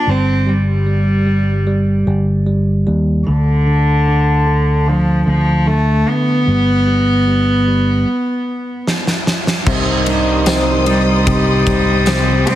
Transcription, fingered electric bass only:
0, 0, Header, 1, 2, 480
1, 0, Start_track
1, 0, Tempo, 800000
1, 41, Time_signature, 4, 2, 24, 8
1, 7531, End_track
2, 0, Start_track
2, 0, Title_t, "Fingered electric bass"
2, 0, Program_c, 0, 33
2, 45, Note_on_c, 0, 31, 80
2, 1219, Note_off_c, 0, 31, 0
2, 1242, Note_on_c, 0, 31, 76
2, 1698, Note_off_c, 0, 31, 0
2, 1722, Note_on_c, 0, 39, 63
2, 1945, Note_off_c, 0, 39, 0
2, 1968, Note_on_c, 0, 38, 81
2, 3140, Note_off_c, 0, 38, 0
2, 3161, Note_on_c, 0, 38, 71
2, 3617, Note_off_c, 0, 38, 0
2, 3884, Note_on_c, 0, 31, 85
2, 4819, Note_off_c, 0, 31, 0
2, 5801, Note_on_c, 0, 36, 104
2, 6977, Note_off_c, 0, 36, 0
2, 7002, Note_on_c, 0, 36, 96
2, 7458, Note_off_c, 0, 36, 0
2, 7531, End_track
0, 0, End_of_file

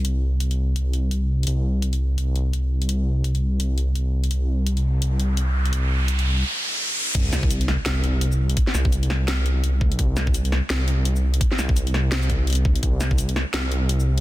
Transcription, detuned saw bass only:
0, 0, Header, 1, 2, 480
1, 0, Start_track
1, 0, Tempo, 355030
1, 64, Time_signature, 4, 2, 24, 8
1, 19205, End_track
2, 0, Start_track
2, 0, Title_t, "Detuned saw bass"
2, 0, Program_c, 0, 39
2, 0, Note_on_c, 0, 36, 83
2, 1963, Note_off_c, 0, 36, 0
2, 1982, Note_on_c, 0, 36, 82
2, 8703, Note_off_c, 0, 36, 0
2, 9664, Note_on_c, 0, 36, 105
2, 10508, Note_off_c, 0, 36, 0
2, 10623, Note_on_c, 0, 36, 98
2, 11571, Note_off_c, 0, 36, 0
2, 11822, Note_on_c, 0, 36, 105
2, 13264, Note_on_c, 0, 38, 98
2, 13284, Note_off_c, 0, 36, 0
2, 13408, Note_on_c, 0, 34, 91
2, 13428, Note_off_c, 0, 38, 0
2, 13497, Note_off_c, 0, 34, 0
2, 13504, Note_on_c, 0, 36, 104
2, 14347, Note_off_c, 0, 36, 0
2, 14464, Note_on_c, 0, 36, 99
2, 15411, Note_off_c, 0, 36, 0
2, 15662, Note_on_c, 0, 36, 106
2, 17102, Note_on_c, 0, 38, 94
2, 17122, Note_off_c, 0, 36, 0
2, 17244, Note_on_c, 0, 34, 92
2, 17264, Note_off_c, 0, 38, 0
2, 17335, Note_off_c, 0, 34, 0
2, 17343, Note_on_c, 0, 36, 98
2, 18187, Note_off_c, 0, 36, 0
2, 18302, Note_on_c, 0, 36, 97
2, 19205, Note_off_c, 0, 36, 0
2, 19205, End_track
0, 0, End_of_file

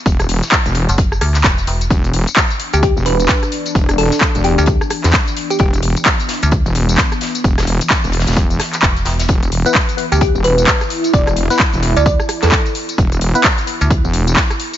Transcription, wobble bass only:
0, 0, Header, 1, 2, 480
1, 0, Start_track
1, 0, Tempo, 461538
1, 60, Time_signature, 4, 2, 24, 8
1, 15364, End_track
2, 0, Start_track
2, 0, Title_t, "Wobble bass"
2, 0, Program_c, 0, 39
2, 61, Note_on_c, 0, 28, 96
2, 421, Note_off_c, 0, 28, 0
2, 684, Note_on_c, 0, 28, 96
2, 901, Note_off_c, 0, 28, 0
2, 1981, Note_on_c, 0, 28, 97
2, 2341, Note_off_c, 0, 28, 0
2, 3084, Note_on_c, 0, 28, 101
2, 3405, Note_off_c, 0, 28, 0
2, 3901, Note_on_c, 0, 28, 93
2, 4262, Note_off_c, 0, 28, 0
2, 4524, Note_on_c, 0, 28, 100
2, 4741, Note_off_c, 0, 28, 0
2, 5244, Note_on_c, 0, 40, 98
2, 5325, Note_off_c, 0, 40, 0
2, 5821, Note_on_c, 0, 28, 96
2, 6181, Note_off_c, 0, 28, 0
2, 6924, Note_on_c, 0, 28, 99
2, 7245, Note_off_c, 0, 28, 0
2, 7741, Note_on_c, 0, 28, 97
2, 8101, Note_off_c, 0, 28, 0
2, 8364, Note_on_c, 0, 28, 99
2, 8581, Note_off_c, 0, 28, 0
2, 8604, Note_on_c, 0, 28, 96
2, 8925, Note_off_c, 0, 28, 0
2, 9661, Note_on_c, 0, 28, 94
2, 10021, Note_off_c, 0, 28, 0
2, 10764, Note_on_c, 0, 28, 101
2, 11085, Note_off_c, 0, 28, 0
2, 11580, Note_on_c, 0, 28, 93
2, 11941, Note_off_c, 0, 28, 0
2, 12204, Note_on_c, 0, 28, 96
2, 12421, Note_off_c, 0, 28, 0
2, 12924, Note_on_c, 0, 40, 103
2, 13005, Note_off_c, 0, 40, 0
2, 13501, Note_on_c, 0, 28, 98
2, 13861, Note_off_c, 0, 28, 0
2, 14605, Note_on_c, 0, 28, 98
2, 14925, Note_off_c, 0, 28, 0
2, 15364, End_track
0, 0, End_of_file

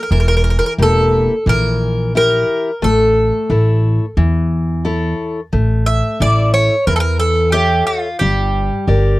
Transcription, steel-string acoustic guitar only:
0, 0, Header, 1, 2, 480
1, 0, Start_track
1, 0, Tempo, 677966
1, 77, Time_signature, 4, 2, 24, 8
1, 3437, Tempo, 670391
1, 6546, End_track
2, 0, Start_track
2, 0, Title_t, "Steel-string acoustic guitar"
2, 0, Program_c, 0, 25
2, 81, Note_on_c, 0, 52, 69
2, 547, Note_off_c, 0, 52, 0
2, 555, Note_on_c, 0, 64, 44
2, 558, Note_on_c, 0, 67, 42
2, 561, Note_on_c, 0, 58, 50
2, 942, Note_off_c, 0, 64, 0
2, 944, Note_off_c, 0, 67, 0
2, 946, Note_off_c, 0, 58, 0
2, 1042, Note_on_c, 0, 52, 60
2, 1508, Note_off_c, 0, 52, 0
2, 1522, Note_on_c, 0, 64, 48
2, 1529, Note_on_c, 0, 67, 46
2, 1535, Note_on_c, 0, 70, 47
2, 1906, Note_off_c, 0, 64, 0
2, 1911, Note_off_c, 0, 67, 0
2, 1912, Note_off_c, 0, 70, 0
2, 1998, Note_on_c, 0, 57, 68
2, 2465, Note_off_c, 0, 57, 0
2, 2477, Note_on_c, 0, 64, 47
2, 2483, Note_on_c, 0, 69, 42
2, 2488, Note_on_c, 0, 73, 41
2, 2862, Note_off_c, 0, 64, 0
2, 2865, Note_off_c, 0, 73, 0
2, 2866, Note_off_c, 0, 69, 0
2, 2953, Note_on_c, 0, 52, 66
2, 3420, Note_off_c, 0, 52, 0
2, 3432, Note_on_c, 0, 64, 49
2, 3434, Note_on_c, 0, 69, 47
2, 3440, Note_on_c, 0, 73, 45
2, 3820, Note_off_c, 0, 64, 0
2, 3822, Note_off_c, 0, 69, 0
2, 3823, Note_off_c, 0, 73, 0
2, 3918, Note_on_c, 0, 57, 63
2, 4386, Note_off_c, 0, 57, 0
2, 4404, Note_on_c, 0, 64, 42
2, 4408, Note_on_c, 0, 69, 37
2, 4411, Note_on_c, 0, 76, 50
2, 4788, Note_off_c, 0, 64, 0
2, 4788, Note_off_c, 0, 69, 0
2, 4791, Note_off_c, 0, 76, 0
2, 4887, Note_on_c, 0, 52, 58
2, 5350, Note_off_c, 0, 52, 0
2, 5355, Note_on_c, 0, 69, 49
2, 5358, Note_on_c, 0, 73, 47
2, 5361, Note_on_c, 0, 76, 45
2, 5742, Note_off_c, 0, 69, 0
2, 5742, Note_off_c, 0, 73, 0
2, 5742, Note_off_c, 0, 76, 0
2, 5844, Note_on_c, 0, 55, 61
2, 6306, Note_off_c, 0, 55, 0
2, 6317, Note_on_c, 0, 67, 45
2, 6320, Note_on_c, 0, 70, 37
2, 6321, Note_on_c, 0, 74, 46
2, 6546, Note_off_c, 0, 67, 0
2, 6546, Note_off_c, 0, 70, 0
2, 6546, Note_off_c, 0, 74, 0
2, 6546, End_track
0, 0, End_of_file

